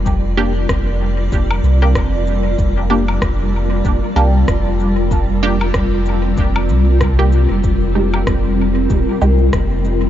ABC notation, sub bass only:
X:1
M:4/4
L:1/16
Q:"Swing 16ths" 1/4=95
K:Gphr
V:1 name="Sub bass" clef=bass
F,,,4 F,,,4 F,,,2 C,,2 F,,,4 | F,,,4 F,,,4 F,,, z C,,2 F,,,4- | F,,,4 F,,,4 F,,,2 C,,4- C,, F,,, | F,,,4 F,,,4 E,,, z C,,2 F,,,4 |]